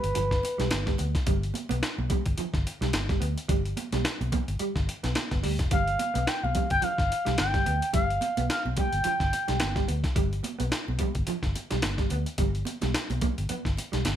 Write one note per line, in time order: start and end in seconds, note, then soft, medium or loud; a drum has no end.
0.00 0.14 G1 medium
0.00 0.95 B4 medium
0.00 closed hi-hat medium
0.15 0.40 G1 medium
0.15 0.25 F3 loud
0.15 closed hi-hat medium
0.15 muted conga soft
0.15 low conga medium
0.31 muted clean electric guitar stroke soft
0.31 kick medium
0.31 snare soft
0.31 closed hi-hat soft
0.43 closed hi-hat medium
0.43 muted conga soft
0.58 0.70 B1 loud
0.58 0.66 G3 medium
0.58 snare soft
0.58 closed hi-hat soft
0.71 0.95 G1 medium
0.71 snare loud
0.71 closed hi-hat loud
0.71 muted conga soft
0.71 high conga medium
0.86 0.94 G3 medium
0.86 kick medium
0.86 snare soft
0.86 closed hi-hat soft
0.98 1.13 D2 loud
0.98 1.09 B3 medium
0.98 closed hi-hat medium
0.98 muted conga soft
1.15 kick loud
1.15 snare soft
1.15 closed hi-hat medium
1.27 1.50 G1 loud
1.27 1.37 G3 medium
1.27 kick loud
1.27 closed hi-hat medium
1.27 muted conga soft
1.27 low conga medium
1.43 closed hi-hat soft
1.54 muted clean electric guitar stroke soft
1.54 closed hi-hat medium
1.54 high conga medium
1.69 1.81 B1 medium
1.69 1.78 B3 medium
1.69 closed hi-hat medium
1.69 high conga medium
1.83 snare loud
1.83 closed hi-hat loud
1.83 muted conga soft
1.98 2.09 B1 medium
1.98 high conga medium
2.10 2.20 G3 medium
2.10 kick loud
2.10 closed hi-hat medium
2.10 high conga medium
2.10 low conga medium
2.26 2.37 G1 medium
2.26 kick medium
2.26 closed hi-hat medium
2.38 2.48 F3 medium
2.38 muted fingered electric bass stroke soft
2.38 closed hi-hat medium
2.38 muted conga soft
2.38 low conga medium
2.54 2.64 G1 loud
2.54 muted clean electric guitar stroke medium
2.54 kick medium
2.54 snare soft
2.54 closed hi-hat soft
2.67 closed hi-hat medium
2.81 2.92 B1 medium
2.81 2.89 G3 medium
2.81 snare soft
2.81 closed hi-hat soft
2.93 3.17 G1 loud
2.93 snare loud
2.93 closed hi-hat loud
2.93 muted conga soft
2.93 high conga medium
3.09 3.17 G3 medium
3.09 kick loud
3.09 snare soft
3.09 closed hi-hat soft
3.20 3.35 D2 medium
3.20 3.31 B3 medium
3.20 closed hi-hat medium
3.38 closed hi-hat medium
3.48 3.73 G1 medium
3.48 3.59 G3 loud
3.48 kick loud
3.48 closed hi-hat loud
3.48 muted conga soft
3.48 low conga medium
3.65 closed hi-hat soft
3.77 muted clean electric guitar stroke soft
3.77 closed hi-hat medium
3.77 high conga medium
3.92 4.03 B1 loud
3.92 4.01 G3 medium
3.92 snare soft
3.92 closed hi-hat medium
3.92 high conga medium
4.05 snare loud
4.05 closed hi-hat loud
4.21 4.31 B1 medium
4.21 closed hi-hat soft
4.21 high conga medium
4.32 4.42 A#3 medium
4.32 kick medium
4.32 closed hi-hat medium
4.32 muted conga soft
4.32 high conga medium
4.32 low conga medium
4.48 4.58 G1 medium
4.48 closed hi-hat soft
4.59 4.70 G3 loud
4.59 muted fingered electric bass stroke soft
4.59 closed hi-hat medium
4.75 4.86 G1 medium
4.75 muted clean electric guitar stroke medium
4.75 kick medium
4.75 snare soft
4.75 closed hi-hat soft
4.89 closed hi-hat medium
5.03 5.14 B1 loud
5.03 5.11 B3 medium
5.03 snare soft
5.03 closed hi-hat medium
5.15 muted clean electric guitar stroke soft
5.15 snare loud
5.15 closed hi-hat loud
5.15 muted conga soft
5.15 high conga medium
5.31 5.42 G1 medium
5.31 5.39 B3 medium
5.31 kick medium
5.31 snare soft
5.31 closed hi-hat soft
5.43 5.57 D2 medium
5.43 5.53 G3 medium
5.43 open hi-hat medium
5.59 5.70 F1 medium
5.59 kick medium
5.59 snare soft
5.59 closed hi-hat medium
5.71 5.95 G1 loud
5.71 5.81 G3 medium
5.71 6.29 F5 loud
5.71 kick loud
5.71 closed hi-hat loud
5.71 muted conga soft
5.71 low conga medium
5.88 closed hi-hat soft
5.99 muted clean electric guitar stroke soft
5.99 closed hi-hat medium
5.99 muted conga soft
5.99 high conga medium
6.14 6.25 B1 medium
6.14 6.22 B3 medium
6.14 closed hi-hat medium
6.14 high conga medium
6.27 6.44 G5 loud
6.27 snare loud
6.27 closed hi-hat loud
6.43 6.53 B1 medium
6.43 6.70 F5 loud
6.43 high conga medium
6.55 6.65 G3 medium
6.55 kick medium
6.55 closed hi-hat medium
6.55 muted conga soft
6.55 high conga medium
6.55 low conga medium
6.70 6.81 G1 medium
6.70 6.85 G5 loud
6.70 kick medium
6.70 closed hi-hat soft
6.82 6.92 F3 medium
6.82 7.39 F5 loud
6.82 muted fingered electric bass stroke soft
6.82 closed hi-hat medium
6.82 low conga medium
6.98 7.09 G1 medium
6.98 muted clean electric guitar stroke soft
6.98 kick medium
6.98 snare soft
6.98 closed hi-hat soft
7.12 closed hi-hat medium
7.25 7.37 B1 medium
7.25 7.33 G3 medium
7.25 snare soft
7.25 closed hi-hat soft
7.38 7.62 G1 loud
7.38 7.91 G5 loud
7.38 snare loud
7.38 closed hi-hat loud
7.38 high conga medium
7.54 7.62 G3 medium
7.54 kick loud
7.54 snare soft
7.54 closed hi-hat soft
7.66 7.80 D2 loud
7.66 7.76 B3 medium
7.66 closed hi-hat medium
7.82 closed hi-hat medium
7.93 8.17 G1 loud
7.93 8.04 G3 medium
7.93 8.46 F5 loud
7.93 kick loud
7.93 closed hi-hat loud
7.93 low conga medium
8.10 closed hi-hat soft
8.21 muted clean electric guitar stroke medium
8.21 closed hi-hat medium
8.21 muted conga soft
8.21 high conga medium
8.37 8.48 B1 medium
8.37 8.45 B3 medium
8.37 closed hi-hat medium
8.37 high conga medium
8.50 8.63 F5 medium
8.50 snare loud
8.50 closed hi-hat loud
8.50 muted conga soft
8.65 8.75 B1 medium
8.65 high conga medium
8.77 8.87 G3 medium
8.77 9.85 G5 loud
8.77 kick loud
8.77 closed hi-hat medium
8.77 muted conga soft
8.77 high conga medium
8.77 low conga medium
8.93 9.03 G1 loud
8.93 closed hi-hat medium
9.04 9.15 F3 medium
9.04 closed hi-hat medium
9.04 low conga medium
9.20 9.31 G1 loud
9.20 muted clean electric guitar stroke soft
9.20 kick medium
9.20 snare soft
9.20 closed hi-hat soft
9.33 closed hi-hat medium
9.33 muted conga soft
9.48 9.59 B1 medium
9.48 9.56 G3 medium
9.48 snare soft
9.48 closed hi-hat soft
9.60 9.85 G1 medium
9.60 snare loud
9.60 closed hi-hat loud
9.60 muted conga soft
9.60 high conga medium
9.76 9.84 G3 medium
9.76 kick medium
9.76 snare soft
9.76 closed hi-hat soft
9.88 10.02 D2 loud
9.88 9.98 B3 medium
9.88 closed hi-hat medium
10.04 kick loud
10.04 snare soft
10.04 closed hi-hat soft
10.16 10.40 G1 loud
10.16 10.26 G3 medium
10.16 kick loud
10.16 closed hi-hat medium
10.16 low conga medium
10.33 closed hi-hat soft
10.43 muted clean electric guitar stroke soft
10.43 closed hi-hat medium
10.43 muted conga soft
10.43 high conga medium
10.59 10.70 B1 loud
10.59 10.67 B3 medium
10.59 closed hi-hat medium
10.59 high conga medium
10.72 snare loud
10.72 closed hi-hat loud
10.72 muted conga soft
10.88 10.98 B1 loud
10.88 high conga medium
10.99 11.09 G3 medium
10.99 kick medium
10.99 closed hi-hat medium
10.99 muted conga soft
10.99 high conga medium
10.99 low conga medium
11.15 11.26 G1 medium
11.15 kick medium
11.15 closed hi-hat soft
11.27 11.37 F3 medium
11.27 muted fingered electric bass stroke soft
11.27 closed hi-hat medium
11.27 muted conga soft
11.27 low conga medium
11.43 11.53 G1 medium
11.43 muted clean electric guitar stroke soft
11.43 kick medium
11.43 snare soft
11.43 closed hi-hat soft
11.56 closed hi-hat medium
11.56 muted conga soft
11.70 11.82 B1 medium
11.70 11.78 G3 medium
11.70 snare soft
11.70 closed hi-hat medium
11.82 12.06 G1 loud
11.82 muted clean electric guitar stroke soft
11.82 snare loud
11.82 closed hi-hat loud
11.82 high conga medium
11.98 12.06 G3 medium
11.98 kick medium
11.98 snare soft
11.98 closed hi-hat soft
12.10 12.24 D2 loud
12.10 12.21 B3 medium
12.10 closed hi-hat medium
12.10 muted conga soft
12.26 closed hi-hat medium
12.38 12.62 G1 loud
12.38 12.48 G3 medium
12.38 kick loud
12.38 closed hi-hat loud
12.38 muted conga soft
12.38 low conga medium
12.55 closed hi-hat soft
12.65 muted clean electric guitar stroke soft
12.65 closed hi-hat medium
12.65 muted conga soft
12.65 high conga medium
12.81 12.93 B1 medium
12.81 12.90 G3 medium
12.81 snare soft
12.81 closed hi-hat soft
12.81 high conga medium
12.94 snare loud
12.94 closed hi-hat loud
12.94 muted conga soft
13.10 13.20 B1 loud
13.10 closed hi-hat soft
13.10 high conga medium
13.21 13.32 A#3 medium
13.21 kick loud
13.21 closed hi-hat medium
13.21 muted conga soft
13.21 high conga medium
13.21 low conga medium
13.38 13.48 G1 medium
13.38 closed hi-hat soft
13.49 13.60 B3 medium
13.49 muted fingered electric bass stroke soft
13.49 closed hi-hat medium
13.49 low conga medium
13.65 13.76 G1 loud
13.65 muted clean electric guitar stroke soft
13.65 kick medium
13.65 snare soft
13.65 closed hi-hat soft
13.77 closed hi-hat medium
13.77 muted conga soft
13.92 14.03 B1 medium
13.92 14.00 G3 medium
13.92 snare soft
13.92 closed hi-hat soft
14.04 14.16 G1 medium
14.04 muted clean electric guitar stroke soft
14.04 snare medium
14.04 closed hi-hat loud
14.04 muted conga soft
14.04 high conga medium